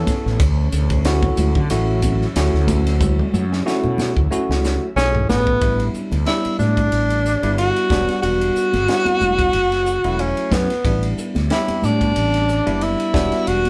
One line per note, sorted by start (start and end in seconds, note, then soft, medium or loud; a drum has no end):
0.00 0.36 B2 medium
0.00 0.36 A3 medium
0.00 0.40 B3 medium
0.00 0.40 C#4 medium
0.00 5.57 C#4 medium
0.00 0.40 E4 medium
0.00 0.40 A4 medium
0.00 0.36 G#5 medium
0.07 kick medium
0.07 snare soft
0.07 hi-hat pedal medium
0.07 ride medium
0.07 low conga medium
0.26 0.38 A1 medium
0.26 snare soft
0.40 0.67 D2 medium
0.40 5.58 C#3 medium
0.40 5.57 F#3 medium
0.40 5.57 E4 medium
0.40 kick loud
0.40 hi-hat pedal medium
0.40 ride medium
0.72 1.28 D2 medium
0.72 hi-hat pedal medium
0.72 ride medium
0.90 kick medium
0.90 ride medium
1.05 1.60 A3 medium
1.05 1.60 C#4 medium
1.05 1.60 E4 medium
1.05 1.60 F#4 medium
1.05 snare loud
1.05 hi-hat pedal medium
1.05 ride medium
1.23 kick medium
1.23 high conga medium
1.37 1.53 D2 medium
1.37 hi-hat pedal medium
1.37 ride medium
1.37 low conga medium
1.55 1.68 D3 medium
1.55 kick medium
1.70 2.25 A1 medium
1.70 2.25 A3 medium
1.70 2.25 C#4 medium
1.70 2.25 E4 medium
1.70 2.25 F#4 medium
1.70 hi-hat pedal medium
1.70 ride medium
2.02 kick medium
2.02 hi-hat pedal medium
2.02 ride medium
2.02 high conga medium
2.21 snare soft
2.36 2.51 D2 medium
2.36 3.44 A3 medium
2.36 3.44 C#4 medium
2.36 3.44 E4 medium
2.36 3.44 F#4 medium
2.36 snare medium
2.36 hi-hat pedal medium
2.36 ride medium
2.54 3.21 D2 medium
2.54 snare soft
2.67 kick medium
2.67 snare soft
2.67 hi-hat pedal medium
2.67 ride medium
2.67 low conga medium
2.87 snare soft
2.87 ride medium
3.01 kick loud
3.01 hi-hat pedal medium
3.01 high tom medium
3.19 high tom medium
3.34 3.61 F#2 medium
3.34 hi-hat pedal medium
3.34 low conga medium
3.53 snare medium
3.66 4.21 A3 medium
3.66 4.20 C#4 medium
3.66 4.21 E4 medium
3.66 4.21 F#4 medium
3.66 snare medium
3.66 hi-hat pedal medium
3.84 4.11 B2 medium
3.84 high conga medium
3.98 snare medium
3.98 hi-hat pedal medium
3.98 low conga medium
4.17 4.29 D2 medium
4.17 kick medium
4.31 4.86 A3 medium
4.31 4.86 C#4 medium
4.31 4.86 E4 medium
4.31 4.86 F#4 medium
4.31 hi-hat pedal medium
4.49 4.76 C#2 medium
4.49 snare medium
4.64 snare medium
4.64 hi-hat pedal medium
4.96 5.25 B1 medium
4.96 5.62 A3 medium
4.96 5.26 C#4 medium
4.96 5.62 C#4 medium
4.96 5.61 E4 medium
4.96 5.62 G#4 medium
4.96 snare medium
4.96 hi-hat pedal medium
5.15 floor tom medium
5.29 5.58 A1 medium
5.29 5.90 B3 loud
5.29 snare medium
5.29 hi-hat pedal medium
5.29 low conga medium
5.47 kick medium
5.62 5.89 A1 medium
5.62 6.16 G3 medium
5.62 6.17 B3 medium
5.62 6.16 D4 medium
5.62 6.17 E4 medium
5.62 kick medium
5.62 ride medium
5.80 ride medium
5.94 muted fretless electric bass stroke soft
5.94 hi-hat pedal medium
6.12 6.24 D2 medium
6.12 ride medium
6.12 high conga medium
6.26 7.21 G3 medium
6.26 7.21 B3 medium
6.26 7.22 D4 medium
6.26 6.57 E4 medium
6.26 7.22 E4 medium
6.26 snare medium
6.26 ride medium
6.45 muted fretless electric bass stroke soft
6.45 ride medium
6.59 6.87 A2 medium
6.59 7.53 D4 medium
6.59 snare soft
6.59 hi-hat pedal medium
6.59 low conga medium
6.77 kick medium
6.77 ride medium
6.92 7.35 A1 medium
6.92 ride medium
7.10 ride medium
7.26 snare soft
7.26 hi-hat pedal medium
7.43 7.70 G1 medium
7.43 7.89 G3 medium
7.43 7.90 B3 medium
7.43 7.90 D4 medium
7.43 7.90 E4 medium
7.43 ride medium
7.58 8.19 F#4 medium
7.58 ride medium
7.76 ride medium
7.90 8.05 E1 medium
7.90 8.73 G3 medium
7.90 8.73 B3 medium
7.90 8.73 D4 medium
7.90 8.73 F#4 medium
7.90 kick medium
7.90 snare medium
7.90 hi-hat pedal medium
7.90 low conga medium
8.09 snare soft
8.09 ride medium
8.22 8.51 E1 medium
8.22 10.22 F#4 loud
8.22 ride medium
8.41 ride medium
8.56 muted fretless electric bass stroke soft
8.56 hi-hat pedal medium
8.73 8.86 G1 medium
8.73 snare soft
8.73 ride medium
8.73 high conga medium
8.88 9.54 G3 medium
8.88 9.54 B3 medium
8.88 9.54 D4 medium
8.88 9.54 E4 medium
8.88 snare medium
8.88 ride medium
9.05 muted fretless electric bass stroke soft
9.05 ride medium
9.05 high conga medium
9.20 9.49 F1 medium
9.20 hi-hat pedal medium
9.20 low conga medium
9.39 kick medium
9.39 ride medium
9.53 9.97 F#1 medium
9.53 ride medium
9.72 snare soft
9.72 ride medium
9.86 hi-hat pedal medium
10.04 10.32 E1 medium
10.04 10.72 F#3 medium
10.04 10.72 A3 medium
10.04 10.72 C#4 medium
10.04 10.72 E4 medium
10.04 ride soft
10.19 10.55 C#4 medium
10.19 ride medium
10.37 ride soft
10.51 10.67 F#2 medium
10.51 11.19 B3 medium
10.51 kick medium
10.51 snare medium
10.51 hi-hat pedal medium
10.51 low conga medium
10.70 snare soft
10.70 ride medium
10.85 11.12 A1 medium
10.85 11.40 G3 medium
10.85 11.40 B3 medium
10.85 11.40 D4 medium
10.85 11.40 E4 medium
10.85 kick medium
10.85 ride medium
11.03 ride medium
11.18 hi-hat pedal medium
11.35 11.49 D2 medium
11.35 snare soft
11.35 ride medium
11.35 high conga medium
11.50 12.46 G3 medium
11.50 12.46 B3 medium
11.50 12.46 D4 medium
11.50 11.86 E4 medium
11.50 12.46 G4 medium
11.50 snare medium
11.50 ride medium
11.68 muted fretless electric bass stroke soft
11.68 ride medium
11.68 high conga medium
11.82 12.11 A2 medium
11.82 12.84 D4 medium
11.82 snare soft
11.82 hi-hat pedal medium
11.82 low conga medium
12.01 kick medium
12.01 ride medium
12.16 12.59 A1 medium
12.16 ride medium
12.34 snare soft
12.34 ride medium
12.48 snare soft
12.48 hi-hat pedal medium
12.66 12.95 F#1 medium
12.66 13.12 G3 medium
12.66 13.12 B3 medium
12.66 13.13 D4 medium
12.66 13.15 E4 medium
12.66 ride medium
12.81 13.49 E4 medium
12.81 ride medium
13.00 ride medium
13.13 13.30 E1 medium
13.13 13.70 G3 medium
13.13 13.70 B3 medium
13.13 13.70 D4 medium
13.13 13.70 F#4 medium
13.13 kick medium
13.13 snare medium
13.13 hi-hat pedal medium
13.13 low conga medium
13.32 snare soft
13.32 ride medium
13.47 13.70 E1 medium
13.47 13.70 F#4 loud
13.47 ride medium
13.65 ride medium
13.65 high conga medium